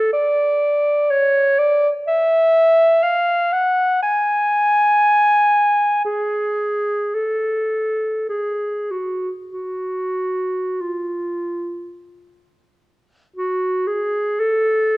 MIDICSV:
0, 0, Header, 1, 2, 480
1, 0, Start_track
1, 0, Tempo, 975610
1, 59, Time_signature, 3, 2, 24, 8
1, 1974, Tempo, 1016949
1, 2934, Tempo, 1071429
1, 3414, Tempo, 1149425
1, 3894, Tempo, 1265823
1, 4854, Tempo, 1209677
1, 5334, Tempo, 1330377
1, 5814, Tempo, 1050788
1, 6559, End_track
2, 0, Start_track
2, 0, Title_t, "Clarinet"
2, 0, Program_c, 0, 71
2, 0, Note_on_c, 0, 69, 84
2, 60, Note_off_c, 0, 69, 0
2, 63, Note_on_c, 0, 74, 74
2, 543, Note_on_c, 0, 73, 79
2, 550, Note_off_c, 0, 74, 0
2, 782, Note_on_c, 0, 74, 77
2, 789, Note_off_c, 0, 73, 0
2, 933, Note_off_c, 0, 74, 0
2, 1020, Note_on_c, 0, 76, 85
2, 1490, Note_on_c, 0, 77, 70
2, 1498, Note_off_c, 0, 76, 0
2, 1735, Note_on_c, 0, 78, 69
2, 1743, Note_off_c, 0, 77, 0
2, 1975, Note_off_c, 0, 78, 0
2, 1981, Note_on_c, 0, 80, 75
2, 2918, Note_off_c, 0, 80, 0
2, 2935, Note_on_c, 0, 68, 64
2, 3425, Note_on_c, 0, 69, 55
2, 3431, Note_off_c, 0, 68, 0
2, 3899, Note_off_c, 0, 69, 0
2, 3901, Note_on_c, 0, 68, 57
2, 4137, Note_on_c, 0, 66, 50
2, 4143, Note_off_c, 0, 68, 0
2, 4288, Note_off_c, 0, 66, 0
2, 4366, Note_on_c, 0, 66, 49
2, 4859, Note_on_c, 0, 65, 38
2, 4865, Note_off_c, 0, 66, 0
2, 5336, Note_off_c, 0, 65, 0
2, 5823, Note_on_c, 0, 66, 57
2, 6056, Note_on_c, 0, 68, 65
2, 6063, Note_off_c, 0, 66, 0
2, 6299, Note_on_c, 0, 69, 76
2, 6306, Note_off_c, 0, 68, 0
2, 6559, Note_off_c, 0, 69, 0
2, 6559, End_track
0, 0, End_of_file